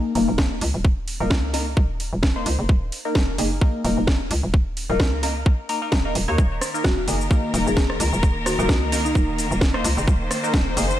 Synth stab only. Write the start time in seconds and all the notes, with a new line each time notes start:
Already playing: A#3 D#4 A#4
0.15 A#3 D#4 A#4
1.20 A#3 D#4 A#4
1.54 A#3 D#4 A#4
2.36 A#3 D#4 C5
3.05 A#3 D#4 A#4
3.38 A#3 D#4 G#4
3.62 A#3 D#4 A#4
3.85 A#3 D#4 A#4
4.90 A#3 D#4 A#4
5.23 A#3 D#4 A#4
5.69 A#3 D#4 A#4
5.82 A#3 D#4 A#4
6.05 A#3 D#4 A#4
6.28 A#3 D#4 C#5
6.74 A#3 D#4 A#4
7.08 A#3 D#4 G#4
7.31 A#3 D#4 A#4
7.54 A#3 D#4 A#4
8.59 A#3 D#4 A#4
8.92 A#3 D#4 A#4
9.74 A#3 D#4 C5
10.43 A#3 D#4 A#4
10.77 A#3 D#4 G#4